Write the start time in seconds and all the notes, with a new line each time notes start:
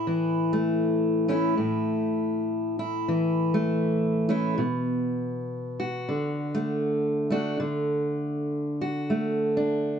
Already playing: A2 E4
0.07 E3
0.53 A3
1.28 A3 C#4 E4
1.57 A2
2.79 E4
3.08 E3
3.54 A3
4.29 A3 C#4 E4
4.58 B2
5.80 F#4
6.09 D3
6.55 A3
7.30 A3 D4 F#4
7.60 D3
8.81 F#4
9.10 A3
9.57 D4